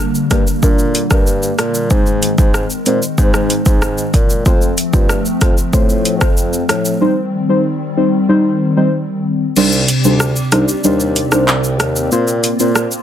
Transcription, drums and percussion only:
0.15 shaker medium
0.31 kick medium
0.31 cross-stick medium
0.31 closed hi-hat medium
0.31 shaker medium
0.47 shaker medium
0.63 kick loud
0.63 shaker medium
0.79 shaker medium
0.95 closed hi-hat medium
0.95 shaker medium
1.11 kick medium
1.11 cross-stick medium
1.11 shaker medium
1.27 shaker medium
1.43 shaker medium
1.59 cross-stick loud
1.59 closed hi-hat medium
1.59 shaker medium
1.75 shaker medium
1.91 kick loud
1.91 shaker medium
2.06 shaker medium
2.23 closed hi-hat medium
2.23 shaker medium
2.38 kick loud
2.38 shaker medium
2.54 cross-stick medium
2.54 shaker medium
2.70 shaker medium
2.86 closed hi-hat medium
2.86 shaker medium
3.02 shaker medium
3.18 kick loud
3.18 shaker medium
3.34 cross-stick medium
3.34 shaker medium
3.50 closed hi-hat medium
3.50 shaker medium
3.66 kick medium
3.66 shaker medium
3.82 cross-stick loud
3.82 shaker medium
3.98 shaker medium
4.14 kick loud
4.14 closed hi-hat medium
4.14 shaker medium
4.30 shaker medium
4.46 kick loud
4.46 shaker medium
4.62 shaker soft
4.78 closed hi-hat medium
4.78 shaker medium
4.93 kick loud
4.93 shaker medium
5.09 cross-stick medium
5.09 shaker medium
5.25 shaker medium
5.41 kick medium
5.41 cross-stick medium
5.41 closed hi-hat medium
5.41 shaker medium
5.58 shaker medium
5.73 kick loud
5.73 shaker medium
5.89 shaker medium
6.05 closed hi-hat medium
6.05 shaker medium
6.21 kick medium
6.21 cross-stick loud
6.21 shaker medium
6.37 shaker medium
6.53 shaker medium
6.69 cross-stick loud
6.69 closed hi-hat medium
6.69 shaker medium
6.85 shaker medium
9.56 crash medium
9.56 shaker medium
9.72 shaker soft
9.88 closed hi-hat medium
9.88 shaker medium
10.04 shaker medium
10.20 cross-stick medium
10.20 shaker medium
10.36 shaker medium
10.52 cross-stick medium
10.52 closed hi-hat medium
10.52 shaker medium
10.68 shaker medium
10.84 shaker medium
11.00 shaker medium
11.16 closed hi-hat medium
11.16 shaker medium
11.32 cross-stick medium
11.32 shaker medium
11.48 clap loud
11.48 shaker medium
11.64 shaker medium
11.80 cross-stick loud
11.80 closed hi-hat medium
11.80 shaker medium
11.96 shaker medium
12.12 shaker medium
12.28 shaker soft
12.44 closed hi-hat medium
12.44 shaker medium
12.60 shaker medium
12.76 cross-stick medium
12.76 shaker medium
12.91 shaker medium

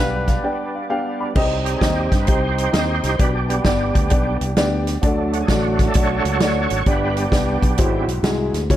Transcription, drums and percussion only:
0.27 kick medium
0.27 snare soft
0.27 closed hi-hat medium
1.36 kick loud
1.36 crash loud
1.66 closed hi-hat medium
1.81 kick medium
1.81 snare loud
1.81 closed hi-hat medium
2.12 kick loud
2.12 snare soft
2.12 closed hi-hat medium
2.27 kick loud
2.27 closed hi-hat medium
2.58 closed hi-hat medium
2.73 snare loud
2.73 closed hi-hat medium
3.03 snare soft
3.03 closed hi-hat medium
3.19 kick loud
3.19 closed hi-hat medium
3.50 closed hi-hat medium
3.65 kick medium
3.65 snare loud
3.65 closed hi-hat medium
3.95 kick loud
3.95 closed hi-hat medium
4.10 kick loud
4.10 closed hi-hat medium
4.41 closed hi-hat medium
4.56 snare loud
4.56 closed hi-hat medium
4.87 snare soft
4.87 closed hi-hat medium
5.03 kick medium
5.03 closed hi-hat medium
5.33 closed hi-hat medium
5.48 kick medium
5.48 snare loud
5.48 closed hi-hat medium
5.79 kick loud
5.79 snare soft
5.79 closed hi-hat medium
5.94 kick loud
5.94 closed hi-hat medium
6.25 closed hi-hat medium
6.40 snare loud
6.40 closed hi-hat medium
6.70 closed hi-hat medium
6.86 kick loud
6.86 closed hi-hat medium
7.17 closed hi-hat medium
7.32 kick loud
7.32 snare medium
7.32 closed hi-hat medium
7.62 kick medium
7.62 closed hi-hat medium
7.78 kick loud
7.78 closed hi-hat medium
8.08 closed hi-hat medium
8.24 snare loud
8.24 closed hi-hat medium
8.54 snare soft
8.54 closed hi-hat medium
8.70 kick loud
8.70 closed hi-hat medium

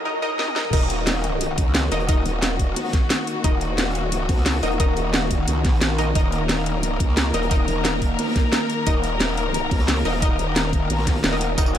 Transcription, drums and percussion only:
0.39 snare medium
0.48 high tom medium
0.56 snare medium
0.65 mid tom medium
0.73 kick loud
0.73 closed hi-hat loud
0.73 closed hi-hat medium
0.73 crash loud
0.89 closed hi-hat medium
1.07 snare loud
1.07 closed hi-hat loud
1.07 open hi-hat medium
1.23 snare soft
1.23 closed hi-hat medium
1.41 closed hi-hat loud
1.41 closed hi-hat medium
1.58 kick loud
1.58 closed hi-hat medium
1.66 snare soft
1.75 snare loud
1.75 closed hi-hat loud
1.91 closed hi-hat medium
2.00 closed hi-hat soft
2.09 kick loud
2.09 closed hi-hat loud
2.09 closed hi-hat medium
2.26 closed hi-hat medium
2.42 snare loud
2.42 closed hi-hat medium
2.59 kick medium
2.59 closed hi-hat medium
2.76 snare loud
2.76 closed hi-hat loud
2.76 open hi-hat medium
2.85 snare medium
2.85 open hi-hat medium
2.88 snare medium
2.88 open hi-hat medium
2.93 kick loud
2.93 snare soft
2.93 closed hi-hat medium
3.02 snare soft
3.10 snare loud
3.10 closed hi-hat loud
3.19 snare soft
3.27 closed hi-hat medium
3.44 kick loud
3.44 closed hi-hat medium
3.44 closed hi-hat loud
3.61 closed hi-hat medium
3.78 snare loud
3.78 closed hi-hat medium
3.78 open hi-hat medium
3.95 snare soft
3.95 closed hi-hat medium
4.12 closed hi-hat loud
4.12 closed hi-hat medium
4.29 kick loud
4.29 snare loud
4.29 closed hi-hat medium
4.29 open hi-hat medium
4.37 snare loud
4.37 open hi-hat medium
4.46 snare loud
4.46 closed hi-hat loud
4.46 open hi-hat medium
4.53 snare loud
4.53 open hi-hat medium
4.63 closed hi-hat medium
4.71 closed hi-hat soft
4.80 kick loud
4.80 closed hi-hat medium
4.96 closed hi-hat medium
5.14 snare loud
5.14 closed hi-hat loud
5.14 closed hi-hat medium
5.31 kick medium
5.31 closed hi-hat medium
5.48 closed hi-hat loud
5.48 closed hi-hat medium
5.65 kick loud
5.65 snare soft
5.65 snare loud
5.65 closed hi-hat medium
5.65 open hi-hat medium
5.81 snare soft
5.81 snare loud
5.81 closed hi-hat medium
5.98 closed hi-hat medium
6.15 kick loud
6.15 closed hi-hat medium
6.32 closed hi-hat medium
6.49 snare loud
6.49 closed hi-hat medium
6.49 open hi-hat medium
6.66 snare soft
6.66 closed hi-hat medium
6.83 closed hi-hat medium
7.00 kick loud
7.00 closed hi-hat medium
7.08 snare soft
7.17 snare loud
7.17 closed hi-hat medium
7.33 closed hi-hat medium
7.43 closed hi-hat soft
7.51 kick loud
7.51 closed hi-hat medium
7.68 closed hi-hat medium
7.85 snare loud
7.85 closed hi-hat medium
8.02 kick medium
8.02 closed hi-hat medium
8.18 snare loud
8.18 closed hi-hat medium
8.18 open hi-hat medium
8.27 snare medium
8.27 open hi-hat medium
8.31 snare medium
8.31 open hi-hat medium
8.36 kick loud
8.36 snare soft
8.36 closed hi-hat medium
8.44 snare medium
8.52 snare loud
8.52 closed hi-hat medium
8.61 snare soft
8.70 closed hi-hat medium
8.87 kick loud
8.87 closed hi-hat loud
8.87 closed hi-hat medium
9.04 closed hi-hat medium
9.20 snare loud
9.20 closed hi-hat medium
9.20 open hi-hat medium
9.37 snare soft
9.37 closed hi-hat medium
9.54 closed hi-hat medium
9.71 kick loud
9.71 snare loud
9.71 closed hi-hat medium
9.71 open hi-hat medium
9.79 snare loud
9.79 open hi-hat medium
9.88 snare loud
9.88 closed hi-hat medium
9.97 snare loud
9.97 open hi-hat medium
10.05 snare loud
10.05 closed hi-hat medium
10.05 open hi-hat medium
10.13 snare loud
10.13 open hi-hat medium
10.22 kick loud
10.22 closed hi-hat medium
10.39 closed hi-hat medium
10.56 snare loud
10.56 closed hi-hat medium
10.73 kick medium
10.73 closed hi-hat medium
10.90 snare loud
10.90 closed hi-hat loud
10.90 open hi-hat medium
10.99 snare loud
10.99 open hi-hat medium
11.07 kick loud
11.07 snare loud
11.07 snare soft
11.07 closed hi-hat medium
11.07 open hi-hat medium
11.15 snare medium
11.15 open hi-hat medium
11.24 snare loud
11.24 closed hi-hat loud
11.24 open hi-hat medium
11.32 snare loud
11.32 open hi-hat medium
11.41 snare loud
11.41 closed hi-hat medium
11.50 snare soft
11.58 kick loud
11.58 closed hi-hat loud
11.58 tambourine medium
11.66 tambourine soft
11.75 closed hi-hat medium

